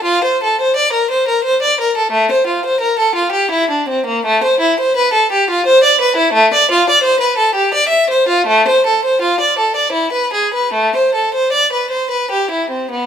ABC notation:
X:1
M:3/4
L:1/16
Q:1/4=85
K:F
V:1 name="Violin"
F c A c d B c B c d B A | A, c F c B A F G E D C B, | [K:Am] A, c E c B A G F c d B E | A, d F d c B A G d e c F |
A, c A c F d A d E B ^G B | A, c A c d B c B G E C B, |]